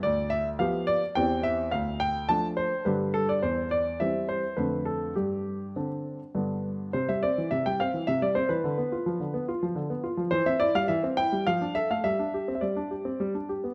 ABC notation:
X:1
M:3/4
L:1/16
Q:1/4=105
K:C
V:1 name="Grand piano"
d2 e2 f2 d2 g2 e2 | f2 g2 a2 c2 B2 A d | c2 d2 e2 c2 B2 A2 | G8 z4 |
c e d2 e g f2 e d c B- | B8- B2 z2 | c e d f e2 g2 f2 e f | e3- e/2 e/2 d6 z2 |]
V:2 name="Grand piano" clef=bass
D,,4 [F,B,G]4 [E,,E,CG]4 | D,,4 [F,A,D]4 [G,,D,G,D]4 | E,,4 [E,G,C]4 [F,,D,A,D]4 | G,,4 [D,CD]4 [G,,D,B,D]4 |
C, G, C E, C, G, C E, C, G, C E, | D, B, F F, D, B, F F, D, B, F F, | E, C E G, E, C E G, F, D A A, | G, D G C G, D G C G, D G B, |]